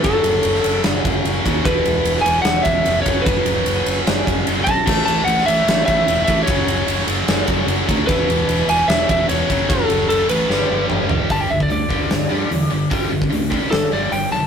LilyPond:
<<
  \new Staff \with { instrumentName = "Lead electric guitar" } { \time 4/4 \key g \lydian \tempo 4 = 149 a'2 r2 | b'4. gis''8 fis''8 e''4 cis''8 | b'2 r4. a''8~ | a''8 a''8 fis''8 e''4 e''4 e''8 |
cis''4. r2 r8 | b'4. gis''8 e''8 e''8 cis''4 | a'4 a'8 b'4. r4 | a''16 g''16 e''16 d''16 d''2. |
r2 a'8 d''8 g''8 a''8 | }
  \new Staff \with { instrumentName = "Distorted electric guitar" } { \clef bass \time 4/4 \key g \lydian <fis, cis fis>2.~ <fis, cis fis>8 <fis, cis fis>8 | <e, b, e>2.~ <e, b, e>8 <fis, cis fis>8~ | <fis, cis fis>2. <fis, cis fis>8 r8 | <a, e a>2.~ <a, e a>8 <a, e a>8 |
<fis, cis fis>2.~ <fis, cis fis>8 <fis, cis fis>8 | <e, b, e>2.~ <e, b, e>8 <fis, cis fis>8~ | <fis, cis fis>2 <g, d g>2 | <g, d g>8 <g, d>8 <g, d>8 <g, d g>8 <g, d>8 <g, d g>8 <g, d>8 <g, d>8 |
<g, d g>8 <g, d>8 <g, d>8 <g, d g>8 <g, d>8 <g, d g>8 <g, d>8 <g, d>8 | }
  \new Staff \with { instrumentName = "Distorted electric guitar" } { \clef bass \time 4/4 \key g \lydian r1 | r1 | r1 | <a, e a>8 <a, e a>8 <a, e a>8 <a, e a>8 <a, e a>8 <a, e a>8 <a, e a>8 <a, e a>8 |
<fis, cis fis>8 <fis, cis fis>8 <fis, cis fis>8 <fis, cis fis>8 <fis, cis fis>8 <fis, cis fis>8 <fis, cis fis>8 <fis, cis fis>8 | <e, b, e>8 <e, b, e>8 <e, b, e>8 <e, b, e>8 <e, b, e>8 <e, b, e>8 <e, b, e>8 <fis, cis fis>8 | <fis, cis fis>8 <fis, cis fis>8 <fis, cis fis>8 <fis, cis fis>8 <g, d g>8 <g, d g>8 <g, d g>8 <g, d g>8 | r1 |
r1 | }
  \new Staff \with { instrumentName = "Fingered electric bass" } { \clef bass \time 4/4 \key g \lydian fis,,8 fis,,8 fis,,8 fis,,8 fis,,8 fis,,8 fis,,8 dis,8 | e,,8 e,,8 e,,8 e,,8 e,,8 e,,8 f,,8 fis,,8 | fis,,8 fis,,8 fis,,8 fis,,8 fis,,8 fis,,8 fis,,8 b,,8 | a,,8 a,,8 a,,8 a,,8 a,,8 a,,8 e,,8 a,,8 |
fis,,8 fis,,8 fis,,8 fis,,8 fis,,8 fis,,8 fis,,8 d,8 | e,,8 e,,8 e,,8 e,,8 e,,8 e,,8 e,,8 fis,,8 | fis,,8 fis,,8 fis,,8 a,,8 g,,8 g,,8 g,,8 g,,8 | g,,8 g,,8 d,8 g,,8 g,,8 g,8 e,8 g,,8 |
g,,8 g,,8 d,4 g,,8 g,,8 g,,8 b,,8 | }
  \new DrumStaff \with { instrumentName = "Drums" } \drummode { \time 4/4 <bd cymr>8 cymr8 cymr16 sn16 cymr8 <cymr sn>8 <bd cymr>8 cymr8 <bd cymr>8 | <bd cymr>8 cymr8 cymr16 sn16 cymr8 <cymr sn>8 <bd cymr>8 cymr8 <bd cymr>8 | <bd cymr>8 cymr8 cymr8 cymr8 <cymr sn>8 <bd cymr>8 cymr8 <bd cymr>8 | <cymc bd>8 cymr8 cymr16 sn16 cymr8 <cymr sn>8 <bd cymr>8 cymr8 <bd cymr>8 |
<bd cymr>8 cymr8 cymr16 sn16 cymr8 <cymr sn>8 <bd cymr>8 cymr8 <bd cymr>8 | <bd cymr>8 cymr8 cymr8 cymr8 <cymr sn>8 <bd cymr>8 cymr8 <bd cymr>8 | <bd cymr>8 cymr8 cymr8 cymr8 sn4 toml8 tomfh8 | <hho bd>8. bd16 hho8 bd8 <hho sn>4 hho4 |
<hho bd>8. bd16 hho8 bd8 <hho sn>4 hho4 | }
>>